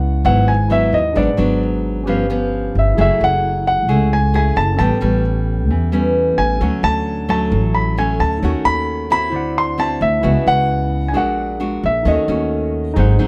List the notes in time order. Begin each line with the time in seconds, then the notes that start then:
Already playing: C#2 C#3 E4 B4 D#5 F#5
0.24 G#1 G#2 F#3 B3 E4 F#5
0.48 G#5
0.68 F#3 B3 E4 B4 D#5 E5 F#5
0.93 D#2 D#5
1.12 G#1 G#2 F#3 B3 D4 G#4 B4
1.17 D4 D5 F#5
1.37 G#1 F#3 B3 D4
2.04 G1 G2 F3 B3 C#4 G4 B4
2.08 C#4 F5
2.30 F3 B3 C#4
2.75 G1 E5
2.94 F#3 A3 E4 G#4 A4
2.98 F#1 G#4 E5 F#5
3.21 F#1 F#5
3.67 F#5
3.88 C#2 C#3 A3 E4 G#4
4.13 G#5
4.34 A3 E4 G#4 G#5
4.56 F#1 A5
4.75 A1 G3 C#4 A4 B4 A5
4.79 A2 B3 C#4 G5
5.01 A1 G3 B3 C#4
5.70 E2 E3
5.92 G3 B3 C#4
6.38 A1 G#5
6.59 D2 D3 F#3 A3 C#4 A4 C#5 F#5
6.83 D2 A5
7.29 F#3 A3 C#4 A5
7.51 A1 A2
7.75 B5
7.97 F#3 A3 C#4 G#5
8.19 D2 A5
8.39 D#2 D#4 A4
8.43 D#3 A3 C#4 F#4 C#5 F#5
8.65 D#2 B5
9.10 C4 E4 F#4 B5
9.30 D2 D3 E4 C5
9.34 D5 F#5
9.58 C6
9.78 C4 E4 F#4 A5
10.01 D2 E5
10.21 C#2 C#3 B3 E4 F#4 B4 D#5
10.27 F#5
10.47 C#2 F#5
11.08 D4 G#5
11.13 A#1 A#2 G#3 D4 F#4 G#4 A#4 F#5
11.60 G#3 D4 F#4
11.83 A#1 E5
12.03 D#2 D#3 A3 C#4 D#4 F#4 A4
12.07 C#5 D#5 F#5
12.28 D#2 A3 C#4 F#4
12.93 G#1 G#2 F#3 C4 D#4 G#4
12.98 C5 F#5
13.19 G#2 F#3 C4 D#4